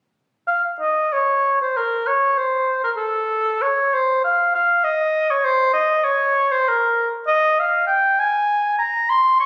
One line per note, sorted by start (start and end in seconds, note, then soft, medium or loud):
0.47 0.62 F5 medium
0.80 1.14 D#5 medium
1.13 1.60 C#5 medium
1.61 1.78 C5 medium
1.77 2.09 A#4 medium
2.07 2.39 C#5 medium
2.38 2.83 C5 medium
2.84 2.91 A#4 medium
2.97 3.63 A4 medium
3.62 3.95 C#5 medium
3.94 4.23 C5 medium
4.24 4.54 F5 medium
4.55 4.86 F5 medium
4.84 5.32 D#5 medium
5.30 5.46 C#5 medium
5.45 5.73 C5 medium
5.73 6.06 D#5 medium
6.04 6.53 C#5 medium
6.52 6.70 C5 medium
6.68 7.08 A#4 medium
7.27 7.61 D#5 medium
7.60 7.86 F5 medium
7.87 8.21 G5 medium
8.20 8.78 G#5 medium
8.79 9.11 A#5 medium
9.10 9.39 C6 medium
9.40 9.46 C#6 medium